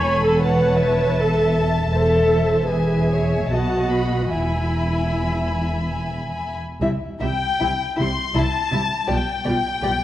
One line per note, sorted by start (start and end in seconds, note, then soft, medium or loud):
0.00 1.90 E1 medium
0.00 1.90 E2 medium
0.00 0.42 A4 medium
0.00 0.23 C#5 medium
0.00 0.42 G#5 medium
0.00 0.41 B5 medium
0.24 0.43 A4 medium
0.41 1.19 B4 medium
0.41 1.17 C#5 medium
0.41 0.80 F#5 medium
0.41 2.69 A5 medium
0.79 1.90 E5 medium
1.17 1.57 A4 medium
1.17 1.55 B4 medium
1.54 1.92 A4 medium
1.91 3.47 E1 medium
1.91 3.47 E2 medium
1.91 2.66 A4 medium
1.91 2.27 C5 medium
1.91 2.66 E5 medium
2.28 2.67 C5 medium
2.68 3.50 G#4 medium
2.68 3.09 B4 medium
2.68 3.48 E5 soft
2.68 3.49 G#5 medium
3.10 3.50 C#5 medium
3.49 4.31 B1 medium
3.49 4.30 B2 medium
3.49 4.32 F#4 medium
3.49 4.32 D#5 medium
3.49 4.32 F#5 soft
3.49 3.89 A5 medium
3.91 4.31 B5 soft
4.31 6.61 E1 medium
4.31 6.61 E2 medium
4.31 5.98 E4 medium
4.31 6.60 E5 soft
4.31 6.57 G#5 soft
4.31 6.57 B5 soft
6.82 6.91 C2 medium
6.82 6.90 C3 medium
6.82 6.90 G3 medium
6.82 6.90 E4 medium
6.82 6.90 E5 medium
7.19 7.30 C2 medium
7.19 7.29 C3 medium
7.19 7.31 G3 medium
7.19 7.27 E4 medium
7.19 7.31 E4 medium
7.19 7.27 E5 medium
7.24 7.95 G5 medium
7.60 7.69 C2 medium
7.60 7.68 C3 medium
7.60 7.70 G3 medium
7.60 7.68 E4 medium
7.60 7.70 E4 medium
7.60 7.68 E5 medium
7.96 8.08 C2 medium
7.96 8.06 C3 medium
7.96 8.08 G3 medium
7.96 8.04 E4 medium
7.96 8.08 E4 medium
7.96 8.04 E5 medium
7.96 8.35 C6 medium
8.34 8.44 C2 medium
8.34 8.43 C3 medium
8.34 8.44 G3 medium
8.34 8.43 E4 medium
8.34 8.45 E4 medium
8.34 8.42 E5 medium
8.34 9.10 A5 medium
8.72 8.81 C2 medium
8.72 8.80 C3 medium
8.72 8.81 G3 medium
8.72 8.80 E4 soft
8.72 8.81 E4 medium
8.72 8.80 E5 soft
9.07 9.17 B1 medium
9.07 9.16 B2 medium
9.07 9.18 G3 medium
9.07 9.18 F4 medium
9.07 9.15 G4 medium
9.07 9.15 D5 medium
9.07 10.04 G5 medium
9.44 9.55 B1 medium
9.44 9.54 B2 medium
9.44 9.55 G3 medium
9.44 9.55 F4 medium
9.44 9.53 G4 medium
9.44 9.52 D5 medium
9.82 9.92 B1 medium
9.82 9.91 B2 medium
9.82 9.93 G3 medium
9.82 9.93 F4 medium
9.82 9.90 G4 medium
9.82 9.90 D5 medium